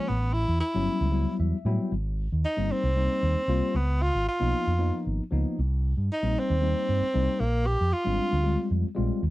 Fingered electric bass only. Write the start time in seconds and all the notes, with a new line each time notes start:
0.10 A1
0.48 E2
0.75 G1
1.01 C#2
1.39 E2
1.52 muted fingered electric bass stroke
1.65 A2
1.92 G#1
2.32 D#2
2.58 G1
2.83 C2
3.23 D#2
3.36 muted fingered electric bass stroke
3.48 C2
3.74 C#2
4.15 G#1
4.41 B1
4.67 F2
5.07 G#1
5.20 muted fingered electric bass stroke
5.32 C#2
5.59 C2
5.97 G2
6.23 A#1
6.50 D#2
6.89 G2
7.02 muted fingered electric bass stroke
7.15 C2
7.40 A#1
7.81 F2
8.06 G#1
8.33 D2
8.71 F2
8.85 muted fingered electric bass stroke
8.98 A#1
9.23 D#2